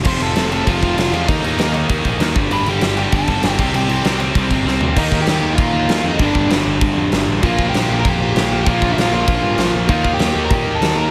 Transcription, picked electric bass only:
0.06 F1
0.20 F1
0.35 F1
0.67 F1
0.83 F1
0.97 F1
1.12 E2
1.29 D#2
1.43 D#2
1.58 D#2
1.90 D#2
2.05 A#1
2.19 D#2
2.35 G1
2.51 G1
2.66 G1
2.81 G1
3.13 G1
3.27 G1
3.43 G1
3.59 C2
3.73 C2
3.89 C2
4.04 C2
4.35 C2
4.51 G1
4.65 C2
4.81 D2
4.97 D#2
5.11 D#2
5.26 D#2
5.42 D#2
5.58 A#2
5.72 D#2
5.88 D#2
6.03 F2
6.19 G1
6.35 G1
6.49 G1
6.65 G1
6.81 G1
6.98 F2
7.12 G1
7.28 A1
7.43 A#1
7.58 A#1
7.72 A#1
7.89 A#1
8.05 F2
8.20 A#1
8.35 A#1
8.50 A#1
8.66 A#1
8.82 A#1
8.96 A#1
9.12 A#1
9.27 A#1
9.42 G2
9.57 A#1
9.74 A#1
9.89 D#2
10.04 D#2
10.19 D#2
10.34 D#2
10.50 A#2
10.65 D#2
10.81 D#2
10.96 D#2

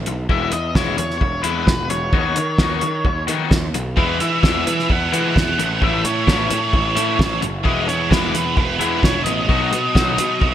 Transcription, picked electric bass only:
0.07 B1
0.29 E1
0.52 E2
0.75 E1
0.98 E2
1.21 E1
1.44 E2
1.67 E1
1.91 E1
2.13 D#2
2.38 D#3
2.59 D#2
2.83 D#3
3.05 D#2
3.28 D#3
3.51 D#2
3.74 B1
3.97 E2
4.21 E3
4.43 E2
4.67 E3
4.90 E2
5.13 E3
5.36 E2
5.59 A1
5.82 A1
6.04 A2
6.28 A1
6.51 A2
6.74 A1
6.96 A2
7.20 A1
7.43 F#1
7.65 E1
7.88 E2
8.11 E1
8.34 E2
8.57 E1
8.80 E2
9.03 E1
9.25 A1
9.49 B1
9.73 B2
9.95 B1
10.18 B2
10.42 B1

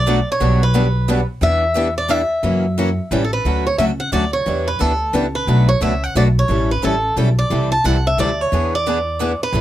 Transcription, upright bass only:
Already playing: B1
0.40 B1
1.41 E2
2.43 F#2
3.11 A1
3.44 D2
3.78 C#2
4.12 D2
4.46 E2
4.81 D2
5.13 C#2
5.47 B1
5.81 C#2
6.15 B1
6.49 A1
6.83 A1
7.16 B1
7.50 C2
7.84 C2
8.17 D2
8.52 E2
9.53 A1

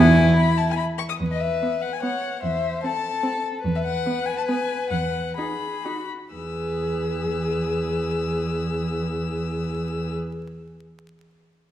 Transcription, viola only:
Already playing: B3
1.62 B3
2.02 B3
2.84 C4
3.23 C4
4.06 B3
4.49 B3
5.38 D#4
5.85 D#4
6.35 G#4

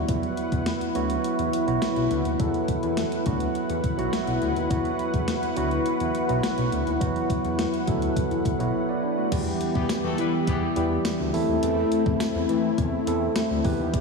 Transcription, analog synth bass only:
0.09 E2
0.52 E2
0.96 D2
1.39 E2
1.68 B1
1.97 B1
2.11 D2
2.25 D#2
2.40 E2
2.83 E2
3.26 D2
3.70 E2
3.98 B1
4.27 B1
4.42 D2
4.57 D#2
4.71 E2
5.14 E2
5.57 D2
6.00 E2
6.29 B1
6.58 B1
6.72 D2
6.87 D#2
7.01 E2
7.45 E2
7.88 D2
8.31 E2
8.60 B1
9.32 E2
9.75 E2
10.04 E2
10.19 E3
10.47 E2
10.77 E2
11.20 D2
11.34 E2
11.48 D#2
11.63 E2
12.06 E2
12.35 E2
12.49 E3
12.78 E2
13.07 E2
13.50 D2
13.65 E2
13.79 D#2
13.93 E2

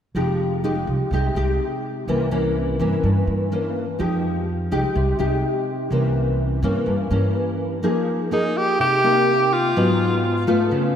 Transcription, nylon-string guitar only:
0.15 F3 G#3 D#4 G4
0.64 G#3 D#4 G4
1.12 C3 G#3 D#4 G4
1.36 G#3 D#4 G4
2.08 C3 E3 A#3 C#4
2.31 E3 A#3 C#4
2.80 E3 A#3 C#4
3.04 G2
3.52 E3 A#3 C#4
3.99 F3 G#3 D#4 G4
4.71 G#3 D#4 G4
4.96 C3
5.19 G#3 D#4 G4
5.91 C3 E3 A#3 C#4
6.63 E3 A#3 C#4
6.86 G2
7.10 E3 A#3 C#4
7.82 F3 A#3 D#4 G#4
8.31 A#3 D#4 G#4
8.79 C3
9.04 A#3 D#4
9.76 G#2 F#3 B3 D#4
10.47 A3 B3 F4
10.71 C#3

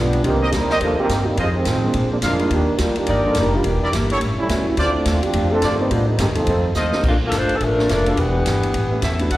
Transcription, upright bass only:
Already playing: B1
0.24 C2
0.52 D2
0.81 D#2
1.09 G2
1.37 F2
1.65 A2
1.94 A#2
2.22 F2
2.50 D#2
2.79 D2
3.07 G1
3.35 F1
3.64 E1
3.82 muted upright bass stroke
3.92 G1
4.21 A1
4.38 muted upright bass stroke
4.49 C#2
4.66 muted upright bass stroke
4.77 D2
5.06 D#2
5.33 F2
5.62 G2
5.91 A2
6.18 G2
6.28 D#2
6.37 C2
6.47 F2
6.75 D#2
7.03 A#1
7.31 G1
7.60 A1
7.89 F1
8.17 E1
8.46 G1
8.74 A1
9.02 E2
9.31 D2

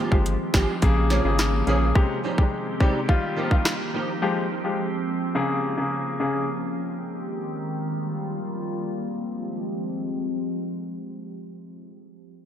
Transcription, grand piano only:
0.11 F3 G#3 G4
0.82 C#3 A#3 G#4
1.25 C#3 A#3 G#4
1.67 C#3 A#3 G#4
1.95 C3 G#3 G4
2.38 C3 G#3 G4
2.80 C3 G#3 G4
3.08 D#3 G3 F4
3.51 D#3 G3 F4
4.22 F3 G#3 G4
4.64 F3 G#3 G4
5.35 C#3 A#3 G#4
5.77 C#3 A#3 G#4
6.20 C#3 A#3 G#4

